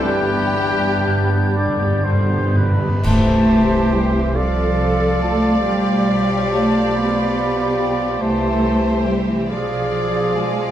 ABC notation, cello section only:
X:1
M:6/8
L:1/16
Q:3/8=46
K:C
V:1 name="Cello section" clef=bass
G,,12 | A,4 G, E, F,4 A,2 | G,4 A,2 B,6 | A,4 G, E, F,4 ^G,2 |]